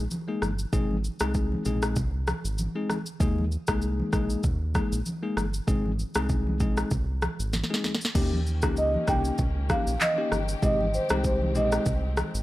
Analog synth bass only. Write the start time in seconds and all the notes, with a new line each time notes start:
0.42 G1
0.73 G#1
1.21 C2
1.66 A#1
1.97 C2
2.44 G#1
3.20 D#2
3.68 C2
4.13 A#1
4.44 D#2
4.92 A#1
5.37 G1
5.68 G#1
6.16 C2
6.60 A#1
6.91 C2
7.39 G#1
8.15 D#2
8.63 C#2
9.08 C2
9.39 C#2
9.87 A#1
10.32 G1
10.63 G#1
11.11 C2
11.55 A#1
11.86 C2
12.34 G#1